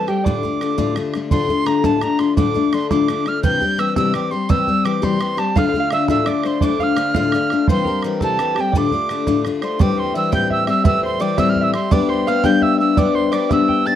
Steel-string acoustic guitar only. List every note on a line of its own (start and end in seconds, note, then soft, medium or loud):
0.07 0.26 G3 soft
0.07 0.26 C4 soft
0.07 0.25 G4 soft
0.26 0.43 D2 medium
0.26 0.44 A2 medium
0.26 0.44 D3 medium
0.26 0.44 A3 medium
0.26 0.43 D4 medium
0.26 0.42 F4 medium
0.43 0.60 D3 soft
0.43 0.61 A3 medium
0.43 0.61 D4 medium
0.43 0.61 F4 medium
0.61 0.77 D3 medium
0.61 0.77 A3 medium
0.61 0.77 D4 medium
0.61 0.76 F4 medium
0.78 0.96 D2 medium
0.78 0.96 A2 medium
0.78 0.95 D3 medium
0.78 0.96 A3 medium
0.78 0.96 D4 medium
0.78 0.96 F4 medium
0.96 1.14 D3 medium
0.96 1.14 A3 medium
0.96 1.14 D4 medium
0.96 1.13 F4 medium
1.14 1.31 D3 soft
1.14 1.31 A3 soft
1.14 1.31 D4 medium
1.14 1.31 F4 medium
1.31 1.49 D2 medium
1.31 1.49 A2 medium
1.31 1.49 D3 medium
1.31 1.49 A3 medium
1.31 1.49 D4 medium
1.31 1.48 F4 medium
1.49 1.65 D3 soft
1.49 1.65 A3 medium
1.49 1.66 D4 medium
1.49 1.67 F4 medium
1.66 1.84 D3 medium
1.66 1.83 A3 medium
1.66 1.83 D4 medium
1.66 1.83 F4 medium
1.84 2.02 D2 medium
1.84 2.03 A2 medium
1.84 2.01 D3 medium
1.84 2.01 A3 medium
1.84 2.01 D4 medium
1.84 2.02 F4 medium
2.02 2.19 D3 medium
2.02 2.19 A3 medium
2.02 2.18 D4 medium
2.02 2.18 F4 medium
2.19 2.37 D3 soft
2.19 2.36 A3 soft
2.19 2.37 D4 medium
2.19 2.37 F4 medium
2.37 2.55 D2 medium
2.37 2.55 A2 medium
2.37 2.55 D3 medium
2.37 2.55 A3 medium
2.37 2.54 D4 medium
2.37 2.53 F4 loud
2.54 2.71 D3 soft
2.54 2.72 A3 soft
2.54 2.73 D4 medium
2.54 2.72 F4 medium
2.72 2.90 D3 medium
2.72 2.90 A3 medium
2.72 2.90 D4 medium
2.72 2.90 F4 medium
2.91 3.09 D2 medium
2.91 3.09 A2 medium
2.91 3.07 D3 medium
2.91 3.09 A3 medium
2.91 3.09 D4 medium
2.91 3.08 F4 medium
3.09 3.26 D3 medium
3.09 3.26 A3 medium
3.09 3.25 D4 medium
3.09 3.25 F4 medium
3.26 3.43 D3 soft
3.26 3.43 A3 soft
3.26 3.43 D4 soft
3.26 3.44 F4 medium
3.43 3.61 C3 medium
3.43 3.61 E3 medium
3.43 3.61 G3 medium
3.43 3.61 C4 loud
3.43 3.60 G4 loud
3.61 3.78 G3 soft
3.61 3.79 C4 soft
3.61 3.79 G4 medium
3.78 3.96 E3 medium
3.78 3.96 G3 medium
3.78 3.95 C4 medium
3.78 3.95 G4 medium
3.97 4.15 C3 medium
3.97 4.13 E3 medium
3.97 4.14 G3 medium
3.97 4.14 C4 medium
3.97 4.14 G4 medium
4.14 4.32 E3 medium
4.14 4.32 G3 medium
4.14 4.31 C4 medium
4.14 4.30 G4 medium
4.31 4.48 G3 soft
4.31 4.49 C4 medium
4.31 4.49 G4 medium
4.49 4.67 C3 medium
4.49 4.67 E3 medium
4.49 4.67 G3 medium
4.49 4.67 C4 medium
4.49 4.65 G4 medium
4.67 4.84 G3 medium
4.67 4.85 C4 medium
4.67 4.85 G4 medium
4.85 5.02 E3 medium
4.85 5.02 G3 medium
4.85 5.01 C4 medium
4.85 5.01 G4 medium
5.02 5.20 C3 medium
5.02 5.19 E3 medium
5.02 5.19 G3 medium
5.02 5.20 C4 medium
5.02 5.20 G4 medium
5.20 5.38 E3 medium
5.20 5.38 G3 medium
5.20 5.37 C4 medium
5.20 5.36 G4 medium
5.37 5.56 G3 soft
5.37 5.56 C4 medium
5.37 5.55 G4 medium
5.56 5.73 D2 medium
5.56 5.74 A2 medium
5.56 5.74 D3 medium
5.56 5.74 A3 medium
5.56 5.74 D4 medium
5.56 5.73 F4 medium
5.74 5.90 D3 soft
5.74 5.91 A3 medium
5.74 5.91 D4 medium
5.74 5.91 F4 medium
5.92 6.09 D3 medium
5.92 6.09 A3 medium
5.92 6.08 D4 medium
5.92 6.08 F4 medium
6.09 6.27 D2 medium
6.09 6.27 A2 medium
6.09 6.25 D3 medium
6.09 6.26 A3 medium
6.09 6.26 D4 medium
6.09 6.27 F4 medium
6.26 6.44 D3 medium
6.26 6.44 A3 medium
6.26 6.44 D4 medium
6.26 6.43 F4 medium
6.44 6.61 D3 soft
6.44 6.61 A3 medium
6.44 6.62 D4 medium
6.44 6.62 F4 medium
6.62 6.79 D2 medium
6.62 6.80 A2 medium
6.62 6.80 D3 medium
6.62 6.80 A3 medium
6.62 6.80 D4 medium
6.62 6.79 F4 loud
6.80 6.95 D3 soft
6.80 6.96 A3 soft
6.80 6.96 D4 medium
6.80 6.97 F4 medium
6.96 7.14 D3 medium
6.96 7.15 A3 medium
6.96 7.15 D4 medium
6.96 7.15 F4 medium
7.16 7.33 D2 medium
7.16 7.33 A2 medium
7.16 7.33 D3 medium
7.16 7.33 A3 medium
7.16 7.33 D4 medium
7.16 7.33 F4 medium
7.34 7.51 D3 medium
7.34 7.51 A3 medium
7.34 7.51 D4 medium
7.34 7.50 F4 medium
7.52 7.69 D3 soft
7.52 7.69 A3 soft
7.52 7.69 D4 medium
7.52 7.69 F4 medium
7.69 7.86 C3 medium
7.69 7.86 E3 medium
7.69 7.86 G3 medium
7.69 7.87 C4 loud
7.69 7.86 G4 loud
7.87 8.03 G3 soft
7.87 8.04 C4 medium
7.87 8.04 G4 medium
8.04 8.21 E3 medium
8.04 8.21 G3 medium
8.04 8.21 C4 medium
8.04 8.21 G4 medium
8.22 8.40 C3 medium
8.22 8.38 E3 medium
8.22 8.39 G3 medium
8.22 8.39 C4 medium
8.22 8.39 G4 medium
8.39 8.56 E3 medium
8.39 8.57 G3 medium
8.39 8.57 C4 medium
8.39 8.56 G4 medium
8.57 8.75 G3 soft
8.57 8.75 C4 medium
8.57 8.74 G4 medium
8.75 8.92 D2 medium
8.75 8.92 A2 medium
8.75 8.92 D3 medium
8.75 8.92 A3 medium
8.75 8.92 D4 medium
8.75 8.91 F4 medium
8.92 9.09 D3 soft
8.92 9.10 A3 soft
8.92 9.10 D4 medium
8.92 9.09 F4 medium
9.10 9.27 D3 medium
9.10 9.27 A3 medium
9.10 9.26 D4 medium
9.10 9.26 F4 medium
9.27 9.45 D2 medium
9.27 9.45 A2 medium
9.27 9.44 D3 medium
9.27 9.45 A3 medium
9.27 9.45 D4 medium
9.27 9.45 F4 medium
9.46 9.63 D3 medium
9.46 9.62 A3 medium
9.46 9.61 D4 medium
9.46 9.61 F4 medium
9.62 9.80 D3 soft
9.62 9.80 A3 medium
9.62 9.80 D4 medium
9.62 9.80 F4 medium
9.79 10.15 A2 medium
9.79 10.14 E3 medium
9.79 10.15 G3 medium
9.79 10.15 C4 loud
9.79 10.17 G4 loud
10.15 10.32 E3 medium
10.15 10.32 G3 medium
10.15 10.31 C4 medium
10.15 10.31 G4 medium
10.32 10.68 A2 medium
10.32 10.68 E3 medium
10.32 10.69 G3 medium
10.32 10.67 C4 medium
10.32 10.67 G4 medium
10.68 10.84 G3 soft
10.68 10.84 C4 medium
10.68 10.85 G4 medium
10.85 11.21 A2 medium
10.85 11.18 E3 medium
10.85 11.20 G3 medium
10.85 11.20 C4 medium
10.85 11.21 G4 medium
11.20 11.38 E3 medium
11.20 11.37 G3 medium
11.20 11.37 C4 medium
11.20 11.37 G4 medium
11.38 11.74 A2 medium
11.38 11.74 E3 medium
11.38 11.75 G3 medium
11.38 11.73 C4 medium
11.38 11.73 G4 medium
11.73 11.90 G3 soft
11.73 11.92 C4 medium
11.73 11.91 G4 medium
11.91 12.27 G3 medium
11.91 12.27 B3 medium
11.91 12.27 D4 medium
11.91 12.28 G4 loud
12.27 12.45 G3 medium
12.27 12.44 B3 medium
12.27 12.43 D4 medium
12.27 12.43 G4 medium
12.44 12.97 G3 medium
12.44 12.80 B3 medium
12.44 12.80 D4 medium
12.44 12.80 G4 medium
12.80 12.97 B3 soft
12.80 12.97 D4 medium
12.80 12.97 G4 medium
12.97 13.31 G3 medium
12.97 13.32 B3 loud
12.97 13.32 D4 medium
12.97 13.33 G4 loud
13.32 13.50 G3 medium
13.32 13.50 B3 medium
13.32 13.50 D4 medium
13.32 13.50 G4 medium
13.51 13.95 G3 medium
13.51 13.86 B3 medium
13.51 13.86 D4 medium
13.51 13.86 G4 medium
13.86 13.95 B3 soft
13.86 13.95 D4 medium
13.86 13.95 G4 medium